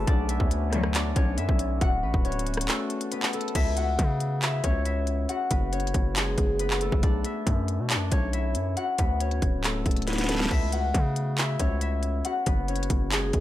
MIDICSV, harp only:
0, 0, Header, 1, 2, 480
1, 0, Start_track
1, 0, Tempo, 434783
1, 82, Time_signature, 4, 2, 24, 8
1, 14796, End_track
2, 0, Start_track
2, 0, Title_t, "Harp"
2, 0, Program_c, 0, 46
2, 0, Note_on_c, 0, 56, 59
2, 0, Note_on_c, 0, 57, 68
2, 0, Note_on_c, 0, 59, 59
2, 0, Note_on_c, 0, 61, 65
2, 0, Note_on_c, 0, 64, 61
2, 0, Note_on_c, 0, 66, 92
2, 0, Note_on_c, 0, 69, 89
2, 0, Note_on_c, 0, 71, 96
2, 0, Note_on_c, 0, 73, 81
2, 82, Note_on_c, 0, 74, 105
2, 91, Note_on_c, 0, 62, 84
2, 137, Note_off_c, 0, 56, 0
2, 149, Note_off_c, 0, 61, 0
2, 149, Note_off_c, 0, 73, 0
2, 322, Note_on_c, 0, 76, 85
2, 327, Note_off_c, 0, 64, 0
2, 331, Note_on_c, 0, 64, 64
2, 862, Note_off_c, 0, 66, 0
2, 1039, Note_off_c, 0, 74, 0
2, 1043, Note_on_c, 0, 74, 88
2, 1048, Note_off_c, 0, 62, 0
2, 1052, Note_on_c, 0, 62, 74
2, 1279, Note_on_c, 0, 73, 90
2, 1287, Note_on_c, 0, 61, 70
2, 1345, Note_off_c, 0, 62, 0
2, 1345, Note_off_c, 0, 74, 0
2, 1516, Note_off_c, 0, 76, 0
2, 1520, Note_on_c, 0, 76, 82
2, 1524, Note_off_c, 0, 64, 0
2, 1528, Note_on_c, 0, 64, 62
2, 1866, Note_off_c, 0, 71, 0
2, 2000, Note_on_c, 0, 78, 108
2, 2008, Note_on_c, 0, 66, 75
2, 2241, Note_on_c, 0, 71, 84
2, 2246, Note_off_c, 0, 59, 0
2, 2250, Note_on_c, 0, 59, 64
2, 2271, Note_off_c, 0, 69, 0
2, 2477, Note_off_c, 0, 73, 0
2, 2482, Note_on_c, 0, 73, 81
2, 2487, Note_off_c, 0, 61, 0
2, 2491, Note_on_c, 0, 61, 68
2, 2959, Note_on_c, 0, 69, 76
2, 2964, Note_off_c, 0, 57, 0
2, 2968, Note_on_c, 0, 57, 61
2, 3422, Note_off_c, 0, 76, 0
2, 3438, Note_off_c, 0, 71, 0
2, 3442, Note_on_c, 0, 71, 81
2, 3447, Note_off_c, 0, 59, 0
2, 3451, Note_on_c, 0, 59, 66
2, 3678, Note_off_c, 0, 69, 0
2, 3682, Note_on_c, 0, 69, 81
2, 3687, Note_off_c, 0, 57, 0
2, 3692, Note_on_c, 0, 57, 65
2, 3775, Note_off_c, 0, 78, 0
2, 3922, Note_on_c, 0, 76, 96
2, 3926, Note_off_c, 0, 64, 0
2, 3930, Note_on_c, 0, 64, 73
2, 4163, Note_on_c, 0, 78, 79
2, 4168, Note_off_c, 0, 66, 0
2, 4172, Note_on_c, 0, 66, 61
2, 4592, Note_off_c, 0, 73, 0
2, 4879, Note_off_c, 0, 76, 0
2, 4883, Note_on_c, 0, 76, 90
2, 4888, Note_off_c, 0, 64, 0
2, 4892, Note_on_c, 0, 64, 69
2, 5124, Note_on_c, 0, 73, 83
2, 5128, Note_off_c, 0, 61, 0
2, 5132, Note_on_c, 0, 61, 64
2, 5356, Note_off_c, 0, 76, 0
2, 5360, Note_on_c, 0, 76, 76
2, 5364, Note_off_c, 0, 64, 0
2, 5369, Note_on_c, 0, 64, 58
2, 5704, Note_off_c, 0, 71, 0
2, 5836, Note_off_c, 0, 78, 0
2, 5841, Note_on_c, 0, 78, 102
2, 5845, Note_off_c, 0, 66, 0
2, 5850, Note_on_c, 0, 66, 87
2, 6083, Note_on_c, 0, 71, 80
2, 6088, Note_off_c, 0, 59, 0
2, 6092, Note_on_c, 0, 59, 60
2, 6107, Note_off_c, 0, 69, 0
2, 6318, Note_off_c, 0, 73, 0
2, 6322, Note_on_c, 0, 73, 77
2, 6326, Note_off_c, 0, 61, 0
2, 6330, Note_on_c, 0, 61, 63
2, 6804, Note_on_c, 0, 68, 73
2, 6813, Note_on_c, 0, 56, 60
2, 6871, Note_off_c, 0, 57, 0
2, 7262, Note_off_c, 0, 76, 0
2, 7279, Note_off_c, 0, 71, 0
2, 7283, Note_on_c, 0, 71, 92
2, 7288, Note_off_c, 0, 59, 0
2, 7292, Note_on_c, 0, 59, 58
2, 7527, Note_on_c, 0, 69, 84
2, 7535, Note_on_c, 0, 57, 67
2, 7593, Note_off_c, 0, 68, 0
2, 7616, Note_off_c, 0, 78, 0
2, 7761, Note_on_c, 0, 74, 99
2, 7769, Note_on_c, 0, 62, 81
2, 7817, Note_off_c, 0, 56, 0
2, 7827, Note_off_c, 0, 61, 0
2, 7827, Note_off_c, 0, 73, 0
2, 8001, Note_on_c, 0, 76, 78
2, 8005, Note_off_c, 0, 64, 0
2, 8010, Note_on_c, 0, 64, 61
2, 8540, Note_off_c, 0, 66, 0
2, 8718, Note_off_c, 0, 74, 0
2, 8723, Note_on_c, 0, 74, 88
2, 8728, Note_off_c, 0, 62, 0
2, 8732, Note_on_c, 0, 62, 73
2, 8959, Note_on_c, 0, 73, 84
2, 8968, Note_on_c, 0, 61, 67
2, 9025, Note_off_c, 0, 62, 0
2, 9025, Note_off_c, 0, 74, 0
2, 9195, Note_off_c, 0, 76, 0
2, 9199, Note_on_c, 0, 76, 82
2, 9203, Note_off_c, 0, 64, 0
2, 9208, Note_on_c, 0, 64, 60
2, 9545, Note_off_c, 0, 71, 0
2, 9680, Note_on_c, 0, 78, 107
2, 9688, Note_on_c, 0, 66, 74
2, 9920, Note_on_c, 0, 71, 80
2, 9924, Note_off_c, 0, 59, 0
2, 9928, Note_on_c, 0, 59, 60
2, 9951, Note_off_c, 0, 69, 0
2, 10157, Note_off_c, 0, 73, 0
2, 10162, Note_on_c, 0, 73, 77
2, 10167, Note_off_c, 0, 61, 0
2, 10172, Note_on_c, 0, 61, 63
2, 10641, Note_on_c, 0, 69, 72
2, 10644, Note_off_c, 0, 57, 0
2, 10648, Note_on_c, 0, 57, 57
2, 11101, Note_off_c, 0, 76, 0
2, 11119, Note_off_c, 0, 71, 0
2, 11123, Note_on_c, 0, 71, 80
2, 11128, Note_off_c, 0, 59, 0
2, 11132, Note_on_c, 0, 59, 68
2, 11360, Note_off_c, 0, 69, 0
2, 11364, Note_on_c, 0, 69, 79
2, 11368, Note_off_c, 0, 57, 0
2, 11372, Note_on_c, 0, 57, 63
2, 11455, Note_off_c, 0, 78, 0
2, 11603, Note_on_c, 0, 76, 94
2, 11608, Note_off_c, 0, 64, 0
2, 11612, Note_on_c, 0, 64, 74
2, 11844, Note_on_c, 0, 78, 81
2, 11849, Note_off_c, 0, 66, 0
2, 11853, Note_on_c, 0, 66, 61
2, 12272, Note_off_c, 0, 73, 0
2, 12559, Note_off_c, 0, 76, 0
2, 12564, Note_on_c, 0, 76, 90
2, 12568, Note_off_c, 0, 64, 0
2, 12573, Note_on_c, 0, 64, 68
2, 12806, Note_on_c, 0, 73, 87
2, 12811, Note_off_c, 0, 61, 0
2, 12815, Note_on_c, 0, 61, 61
2, 13038, Note_off_c, 0, 76, 0
2, 13043, Note_on_c, 0, 76, 78
2, 13048, Note_off_c, 0, 64, 0
2, 13052, Note_on_c, 0, 64, 58
2, 13386, Note_off_c, 0, 71, 0
2, 13519, Note_off_c, 0, 78, 0
2, 13523, Note_on_c, 0, 78, 104
2, 13528, Note_off_c, 0, 66, 0
2, 13532, Note_on_c, 0, 66, 84
2, 13765, Note_on_c, 0, 71, 80
2, 13769, Note_off_c, 0, 59, 0
2, 13773, Note_on_c, 0, 59, 61
2, 13789, Note_off_c, 0, 69, 0
2, 14000, Note_off_c, 0, 73, 0
2, 14004, Note_on_c, 0, 73, 79
2, 14008, Note_off_c, 0, 61, 0
2, 14012, Note_on_c, 0, 61, 64
2, 14485, Note_on_c, 0, 68, 74
2, 14494, Note_on_c, 0, 56, 59
2, 14552, Note_off_c, 0, 57, 0
2, 14796, Note_off_c, 0, 56, 0
2, 14796, Note_off_c, 0, 59, 0
2, 14796, Note_off_c, 0, 61, 0
2, 14796, Note_off_c, 0, 64, 0
2, 14796, Note_off_c, 0, 66, 0
2, 14796, Note_off_c, 0, 68, 0
2, 14796, Note_off_c, 0, 71, 0
2, 14796, Note_off_c, 0, 73, 0
2, 14796, Note_off_c, 0, 76, 0
2, 14796, Note_off_c, 0, 78, 0
2, 14796, End_track
0, 0, End_of_file